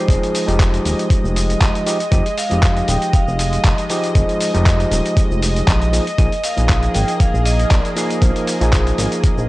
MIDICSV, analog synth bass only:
0, 0, Header, 1, 2, 480
1, 0, Start_track
1, 0, Key_signature, -4, "minor"
1, 0, Tempo, 508475
1, 79, Time_signature, 4, 2, 24, 8
1, 8956, End_track
2, 0, Start_track
2, 0, Title_t, "Analog synth bass"
2, 0, Program_c, 0, 38
2, 81, Note_on_c, 0, 29, 102
2, 169, Note_off_c, 0, 29, 0
2, 455, Note_on_c, 0, 29, 85
2, 746, Note_off_c, 0, 29, 0
2, 805, Note_on_c, 0, 27, 100
2, 891, Note_off_c, 0, 27, 0
2, 1173, Note_on_c, 0, 29, 93
2, 1465, Note_off_c, 0, 29, 0
2, 1522, Note_on_c, 0, 29, 88
2, 1610, Note_off_c, 0, 29, 0
2, 2001, Note_on_c, 0, 29, 101
2, 2089, Note_off_c, 0, 29, 0
2, 2372, Note_on_c, 0, 29, 89
2, 2665, Note_off_c, 0, 29, 0
2, 2721, Note_on_c, 0, 27, 106
2, 2809, Note_off_c, 0, 27, 0
2, 2961, Note_on_c, 0, 29, 43
2, 3064, Note_off_c, 0, 29, 0
2, 3093, Note_on_c, 0, 29, 94
2, 3385, Note_off_c, 0, 29, 0
2, 3439, Note_on_c, 0, 29, 83
2, 3528, Note_off_c, 0, 29, 0
2, 3920, Note_on_c, 0, 29, 100
2, 4009, Note_off_c, 0, 29, 0
2, 4291, Note_on_c, 0, 29, 88
2, 4584, Note_off_c, 0, 29, 0
2, 4640, Note_on_c, 0, 27, 103
2, 4729, Note_off_c, 0, 27, 0
2, 5012, Note_on_c, 0, 29, 92
2, 5305, Note_off_c, 0, 29, 0
2, 5360, Note_on_c, 0, 34, 95
2, 5664, Note_off_c, 0, 34, 0
2, 5839, Note_on_c, 0, 34, 102
2, 5928, Note_off_c, 0, 34, 0
2, 6210, Note_on_c, 0, 34, 85
2, 6504, Note_off_c, 0, 34, 0
2, 6561, Note_on_c, 0, 32, 103
2, 6649, Note_off_c, 0, 32, 0
2, 6798, Note_on_c, 0, 34, 44
2, 6903, Note_off_c, 0, 34, 0
2, 6930, Note_on_c, 0, 34, 94
2, 7224, Note_off_c, 0, 34, 0
2, 7278, Note_on_c, 0, 34, 85
2, 7368, Note_off_c, 0, 34, 0
2, 7759, Note_on_c, 0, 34, 101
2, 7848, Note_off_c, 0, 34, 0
2, 8130, Note_on_c, 0, 34, 87
2, 8424, Note_off_c, 0, 34, 0
2, 8482, Note_on_c, 0, 32, 104
2, 8570, Note_off_c, 0, 32, 0
2, 8851, Note_on_c, 0, 34, 92
2, 8956, Note_off_c, 0, 34, 0
2, 8956, End_track
0, 0, End_of_file